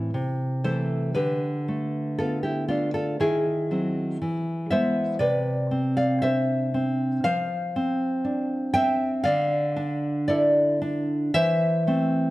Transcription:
0.00 0.11 A2 medium
0.00 0.61 E4 medium
0.14 1.14 C3 medium
0.64 1.12 E3 medium
0.64 1.12 A3 medium
0.64 1.13 A4 medium
0.64 1.14 C5 medium
1.14 3.16 D3 medium
1.14 2.15 G4 medium
1.14 2.14 B4 medium
1.68 2.69 A3 medium
2.18 2.69 B3 medium
2.18 2.43 F4 medium
2.18 2.42 A4 medium
2.43 2.68 E4 medium
2.43 2.68 G4 medium
2.68 3.21 A3 medium
2.68 2.94 D4 medium
2.68 2.94 F4 medium
2.94 3.19 F4 medium
2.94 3.20 A4 medium
3.20 4.18 D#3 medium
3.20 4.66 E4 medium
3.20 4.66 G#4 medium
3.71 4.17 F#3 medium
3.71 4.17 C4 medium
4.22 5.17 E3 medium
4.70 5.17 G#3 medium
4.70 5.16 B3 medium
4.70 5.17 C5 medium
4.70 5.18 E5 loud
5.19 7.19 C3 medium
5.19 5.92 B4 medium
5.19 5.93 D5 loud
5.71 6.73 C4 medium
5.97 6.21 D5 medium
5.97 6.22 F5 loud
6.22 7.24 D4 medium
6.22 7.20 C5 medium
6.22 7.19 E5 loud
6.74 7.24 C4 medium
7.24 9.21 F3 medium
7.24 8.70 C5 medium
7.24 8.70 F5 loud
7.76 8.74 C4 medium
8.25 9.25 D4 medium
8.74 9.25 C4 medium
8.74 9.21 E5 medium
8.74 9.22 G5 loud
9.24 11.30 D3 medium
9.24 10.24 D5 medium
9.24 10.24 F5 loud
9.76 10.80 D4 medium
10.28 11.34 E4 medium
10.28 10.78 A4 medium
10.28 10.79 D5 loud
10.82 11.34 D4 medium
11.34 12.30 E3 medium
11.34 12.30 C5 loud
11.34 12.30 E5 loud
11.87 12.30 A3 medium
11.87 12.30 C4 medium

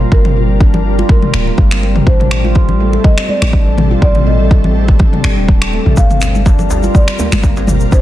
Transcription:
0.00 5.94 G3 medium
0.00 0.11 G3 medium
0.00 2.03 F4 medium
0.00 2.03 A#4 medium
0.12 1.03 G1 loud
0.12 0.24 G3 medium
0.12 1.08 A#4 loud
0.12 kick loud
0.25 0.36 C4 medium
0.25 mid tom medium
0.25 muted conga medium
0.37 0.48 G3 medium
0.60 0.73 D4 loud
0.60 kick loud
0.60 muted conga soft
0.74 0.80 G3 loud
0.74 low conga loud
0.98 1.08 F4 loud
0.98 muted conga medium
1.09 1.17 G3 loud
1.09 1.79 A#4 loud
1.09 kick loud
1.09 high conga medium
1.09 low conga loud
1.22 mid tom medium
1.22 high conga medium
1.34 1.50 D1 loud
1.34 1.46 A#3 loud
1.34 finger snap medium
1.47 1.57 G3 medium
1.47 muted conga soft
1.58 2.01 G1 loud
1.58 1.70 G3 medium
1.58 kick loud
1.58 high conga medium
1.71 1.82 C4 medium
1.71 finger snap medium
1.83 1.94 G3 medium
1.83 muted conga medium
1.96 mid tom medium
2.07 2.98 A1 loud
2.07 5.93 C4 medium
2.07 2.19 D4 loud
2.07 5.93 A4 medium
2.07 3.07 C5 loud
2.07 kick loud
2.20 2.26 G3 loud
2.20 mid tom medium
2.20 muted conga soft
2.31 finger snap medium
2.45 2.55 F4 loud
2.45 high conga medium
2.55 2.63 G3 loud
2.55 kick loud
2.55 muted conga soft
2.69 low conga loud
2.80 2.92 A3 loud
2.93 3.03 G3 medium
2.93 muted conga medium
3.04 3.17 G3 medium
3.04 3.30 D#5 loud
3.04 kick loud
3.18 3.28 C4 medium
3.18 finger snap loud
3.29 3.41 G3 medium
3.29 4.01 D5 loud
3.29 high conga medium
3.42 3.96 A1 loud
3.42 finger snap loud
3.42 muted conga soft
3.42 high conga loud
3.53 3.65 D4 loud
3.53 kick loud
3.67 3.73 G3 loud
3.78 mid tom medium
3.78 muted conga medium
3.78 high conga loud
3.78 low conga loud
3.91 4.01 F4 loud
4.02 4.93 A1 loud
4.02 4.09 G3 loud
4.02 4.27 D5 loud
4.02 kick loud
4.15 mid tom medium
4.15 muted conga soft
4.27 4.38 A3 loud
4.27 5.20 D#5 loud
4.40 4.50 G3 medium
4.51 kick loud
4.51 muted conga soft
4.64 4.75 C4 medium
4.64 low conga loud
4.76 4.87 G3 medium
4.88 kick medium
4.88 muted conga medium
4.99 5.12 D4 loud
4.99 kick loud
4.99 high conga medium
4.99 low conga loud
5.13 5.19 G3 loud
5.13 mid tom medium
5.13 high conga medium
5.24 5.39 G1 loud
5.24 finger snap medium
5.37 5.79 D#1 medium
5.37 5.47 D4 medium
5.37 muted conga soft
5.48 5.60 D4 medium
5.48 kick loud
5.48 high conga medium
5.62 finger snap medium
5.73 5.85 A3 loud
5.73 muted conga soft
5.86 5.93 A1 loud
5.86 5.92 D4 medium
5.86 mid tom medium
5.97 6.88 G1 loud
5.97 6.09 G3 medium
5.97 8.02 G3 medium
5.97 8.02 F4 medium
5.97 8.02 A#4 loud
5.97 6.98 F5 loud
5.97 kick loud
5.97 djembe tone medium
5.97 shaker medium
6.10 6.21 C4 medium
6.10 mid tom medium
6.10 muted conga soft
6.10 shaker soft
6.21 finger snap medium
6.21 djembe tone medium
6.21 shaker medium
6.35 high conga medium
6.35 shaker soft
6.46 6.58 D4 loud
6.46 kick loud
6.46 muted conga soft
6.46 djembe tone loud
6.46 shaker medium
6.59 6.65 G3 loud
6.59 low conga medium
6.59 shaker soft
6.70 djembe tone loud
6.70 shaker medium
6.83 6.94 F4 loud
6.83 muted conga medium
6.83 shaker soft
6.95 7.02 G3 loud
6.95 7.64 D5 medium
6.95 kick loud
6.95 djembe tone medium
6.95 shaker medium
7.08 7.18 G3 medium
7.08 finger snap loud
7.08 shaker soft
7.19 7.31 A#3 loud
7.19 high conga medium
7.19 djembe tone medium
7.19 shaker loud
7.32 7.86 G1 loud
7.32 7.42 G3 medium
7.32 finger snap loud
7.32 muted conga soft
7.32 high conga loud
7.32 shaker soft
7.43 7.55 G3 medium
7.43 kick loud
7.43 djembe tone loud
7.43 shaker medium
7.56 7.68 C4 medium
7.56 djembe slap medium
7.56 shaker soft
7.67 mid tom medium
7.67 muted conga soft
7.67 high conga loud
7.67 djembe tone medium
7.67 low conga medium
7.67 shaker medium
7.80 shaker soft
7.92 8.02 G1 loud
7.92 8.02 D4 loud
7.92 8.02 C5 loud
7.92 kick loud
7.92 djembe tone medium
7.92 shaker medium

